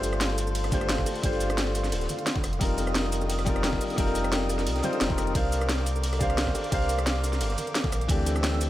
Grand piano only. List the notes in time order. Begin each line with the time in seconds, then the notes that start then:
Already playing: A3 D4 F4 G4 C5
0.71 A3 D4 F4 G4 C5
1.22 A3 D4 F4 G4 C5
2.59 G3 C4 D#4 F4 A#4
3.45 G3 C4 D#4 F4 A#4
3.96 G3 C4 D#4 F4 A#4
4.83 G3 C4 D#4 F4 C5
5.09 G3 C4 D#4 F4 A#4
5.33 D4 G4 A#4 C5 F5
6.19 D4 G4 A#4 C5 F5
6.70 D4 G4 A#4 C5 F5
8.07 E3 A3 C4 D4 G4